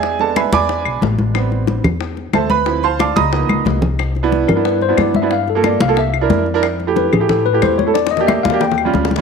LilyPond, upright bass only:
\new Staff \with { instrumentName = "Upright bass" } { \clef bass \time 4/4 \key c \major \tempo 4 = 182 e,4. e,4 b,,8 a,,4~ | a,,4. e,4. d,4~ | d,4. des,4 des,8 c,4~ | c,4. g,4. g,4~ |
g,4. c,4. f,4~ | f,4. a,4. e,4~ | e,4. ees,4. d,4 | }